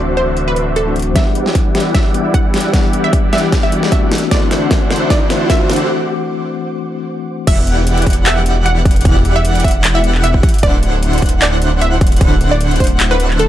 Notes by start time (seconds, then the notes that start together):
Already playing: D1 D3 E3 A3 C4 D4 F#4 C5 E5 F#5 D6
0.17 C5, closed hi-hat
0.37 closed hi-hat
0.48 B4
0.56 closed hi-hat
0.76 A4, closed hi-hat
0.86 E3 A3 C4 D4 F#4
0.96 closed hi-hat
0.99 closed hi-hat
1.02 closed hi-hat
1.14 E1 E3 G3 B3 D4 E4 G4 D5 E5 F#5 E6, kick, snare, closed hi-hat, riser
1.35 closed hi-hat
1.46 snare
1.55 kick, closed hi-hat
1.75 E1 E3 E4 G4 D5 F#5, snare, closed hi-hat
1.80 closed hi-hat
1.95 E5, kick, snare, closed hi-hat
2.12 E3 G3 B3 D4, closed hi-hat
2.16 F#5
2.34 F#5, kick, closed hi-hat
2.54 snare, closed hi-hat
2.57 closed hi-hat
2.60 closed hi-hat
2.71 E1 E3 G3 B3 D4 E4 G4 D5 F#5, kick, snare, closed hi-hat
2.75 F#5
2.93 closed hi-hat
3.04 E5
3.13 kick, closed hi-hat
3.33 E1 E3 E4 G4 D5 E5 F#5, snare, closed hi-hat
3.38 closed hi-hat
3.52 kick, snare, closed hi-hat
3.63 E5
3.71 E3 G3 B3 D4 F#4, closed hi-hat
3.83 snare
3.91 E3 A3 C4 D4 F#4 E5, kick, closed hi-hat
4.12 C5 F#5 D6, snare, closed hi-hat
4.15 closed hi-hat
4.18 closed hi-hat
4.29 D1 D3 E3 A3 C4 D4 E4 C5 D5 F#5, kick, snare, closed hi-hat
4.33 F#4
4.51 snare, closed hi-hat
4.71 kick, snare, closed hi-hat
4.90 D1 D3 D4 E4 C5 F#5, snare, closed hi-hat
4.96 closed hi-hat
5.10 D5, kick, snare, closed hi-hat
5.28 E3 A3 C4 D4, snare, closed hi-hat
5.32 F#4
5.50 E5, kick, snare, closed hi-hat
5.70 snare, closed hi-hat
5.73 closed hi-hat
5.76 closed hi-hat
7.47 E1 E3 E4 G4 D5 E5 F#5, kick, closed hi-hat, ride, crash
7.67 closed hi-hat
7.87 closed hi-hat
7.97 closed hi-hat
8.02 closed hi-hat
8.06 E1 E3 E4 G4 D5 F#5, kick, closed hi-hat
8.10 closed hi-hat
8.13 closed hi-hat
8.26 E5, clap, closed hi-hat, ride
8.46 closed hi-hat
8.66 F#5, closed hi-hat
8.85 kick, closed hi-hat
8.91 closed hi-hat
8.96 closed hi-hat
9.01 closed hi-hat
9.05 E1 E3 E4 G4 D5 F#5, kick, closed hi-hat, ride
9.25 closed hi-hat
9.36 E5
9.45 closed hi-hat
9.55 closed hi-hat
9.60 closed hi-hat
9.64 E1 E3 E4 G4 D5 E5 F#5, kick, closed hi-hat
9.68 closed hi-hat
9.71 closed hi-hat
9.84 clap, closed hi-hat, ride
9.95 E5
10.04 closed hi-hat
10.15 clap
10.24 E5, closed hi-hat
10.34 kick
10.43 kick, closed hi-hat
10.49 closed hi-hat
10.54 closed hi-hat
10.59 closed hi-hat
10.63 D1 D3 D4 E4 C5 D5 F#5, kick, closed hi-hat, ride
10.83 closed hi-hat
11.03 closed hi-hat
11.13 closed hi-hat
11.18 closed hi-hat
11.22 D1 D3 D4 E4 C5 F#5, kick, closed hi-hat
11.26 closed hi-hat
11.29 closed hi-hat
11.42 D5, clap, closed hi-hat, ride
11.62 closed hi-hat
11.81 E5, closed hi-hat
12.01 kick, closed hi-hat
12.07 closed hi-hat
12.12 closed hi-hat
12.16 closed hi-hat
12.21 D1 D3 D4 E4 C5 F#5, kick, closed hi-hat, ride
12.41 closed hi-hat
12.51 D5
12.61 closed hi-hat
12.71 closed hi-hat
12.76 closed hi-hat
12.80 D1 D3 D4 E4 C5 F#5, kick, closed hi-hat
12.84 closed hi-hat
12.87 closed hi-hat
13.00 clap, closed hi-hat, ride
13.11 B4
13.20 closed hi-hat
13.30 clap
13.39 A4, closed hi-hat